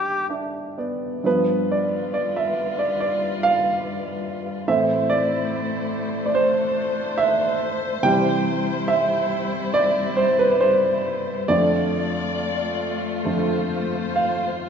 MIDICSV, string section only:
0, 0, Header, 1, 2, 480
1, 0, Start_track
1, 0, Tempo, 952381
1, 632, Time_signature, 4, 2, 24, 8
1, 632, Tempo, 877193
1, 1592, Tempo, 840336
1, 4952, Tempo, 869565
1, 6872, Tempo, 898204
1, 8113, End_track
2, 0, Start_track
2, 0, Title_t, "String section"
2, 0, Program_c, 0, 48
2, 626, Note_on_c, 0, 71, 67
2, 627, Note_on_c, 0, 65, 59
2, 629, Note_on_c, 0, 55, 61
2, 2528, Note_off_c, 0, 71, 0
2, 2529, Note_off_c, 0, 65, 0
2, 2530, Note_off_c, 0, 55, 0
2, 2536, Note_on_c, 0, 57, 71
2, 2542, Note_on_c, 0, 72, 79
2, 2543, Note_on_c, 0, 64, 64
2, 3489, Note_on_c, 0, 62, 68
2, 3492, Note_off_c, 0, 64, 0
2, 4438, Note_off_c, 0, 57, 0
2, 4448, Note_off_c, 0, 62, 0
2, 4468, Note_on_c, 0, 55, 76
2, 4471, Note_on_c, 0, 64, 66
2, 6368, Note_off_c, 0, 72, 0
2, 6377, Note_off_c, 0, 55, 0
2, 6379, Note_off_c, 0, 64, 0
2, 6395, Note_on_c, 0, 57, 81
2, 6397, Note_on_c, 0, 65, 70
2, 6398, Note_on_c, 0, 74, 85
2, 7337, Note_off_c, 0, 74, 0
2, 7340, Note_on_c, 0, 72, 69
2, 8113, Note_off_c, 0, 57, 0
2, 8113, Note_off_c, 0, 65, 0
2, 8113, Note_off_c, 0, 72, 0
2, 8113, End_track
0, 0, End_of_file